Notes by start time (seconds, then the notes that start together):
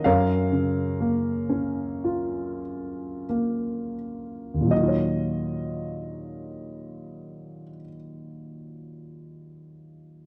0.04 F#2 A#4 C#5 F5
0.52 C#3
1.00 A#3
1.49 C#4
2.04 F4
3.29 A#3
4.54 D#2
4.61 A#2
4.67 F#3 D#5
4.74 D#4
4.81 F4
4.88 C#5